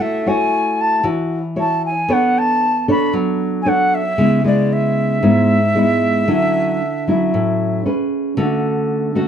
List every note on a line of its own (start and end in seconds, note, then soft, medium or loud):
0.00 1.01 A3 medium
0.00 0.25 E4 medium
0.00 0.25 F#4 soft
0.00 0.26 C#5 medium
0.00 0.30 E5 medium
0.26 1.00 E4 medium
0.26 1.00 F#4 medium
0.26 1.01 C#5 medium
0.26 0.82 G#5 medium
0.81 1.05 A5 medium
1.03 2.06 E3 medium
1.03 1.37 E4 soft
1.03 1.37 F#4 medium
1.03 1.38 C#5 soft
1.56 1.90 E4 medium
1.56 1.90 F#4 medium
1.56 1.90 C#5 medium
1.56 1.82 A5 medium
1.86 2.14 G#5 medium
2.08 3.11 B3 medium
2.08 2.61 D4 soft
2.08 2.61 A4 soft
2.08 2.61 C#5 medium
2.13 2.40 F#5 medium
2.38 2.89 A5 medium
2.88 3.62 D4 medium
2.88 3.62 A4 medium
2.88 3.62 C#5 medium
2.88 3.13 B5 medium
3.13 4.15 F#3 medium
3.62 4.01 D4 medium
3.62 4.01 A4 medium
3.62 3.70 G#5 medium
3.66 4.01 C#5 medium
3.66 3.96 F#5 medium
3.95 4.46 E5 loud
4.18 5.20 C#3 medium
4.18 4.40 G#3 medium
4.18 4.40 B3 medium
4.18 4.40 E4 medium
4.44 5.19 G#3 medium
4.44 5.19 B3 medium
4.44 5.19 E4 medium
4.44 4.74 D5 medium
4.73 7.86 E5 medium
5.23 6.25 G#2 medium
5.23 5.56 G#3 soft
5.23 5.57 B3 soft
5.23 5.57 E4 medium
5.75 6.23 G#3 medium
5.75 6.24 B3 medium
5.75 6.24 E4 medium
6.28 7.30 D3 medium
6.28 6.80 F#3 soft
6.28 6.80 C#4 soft
6.28 6.80 E4 medium
7.08 7.81 F#3 medium
7.08 7.82 C#4 medium
7.08 7.82 E4 medium
7.34 7.83 A2 medium
7.85 8.35 C#4 medium
7.85 8.36 G#4 medium
7.85 8.36 B4 soft
8.37 9.28 D3 medium
8.37 9.12 A3 medium
8.37 9.12 C#4 soft
8.37 9.12 F#4 medium
9.15 9.28 A3 medium
9.15 9.28 C#4 medium
9.15 9.28 F#4 medium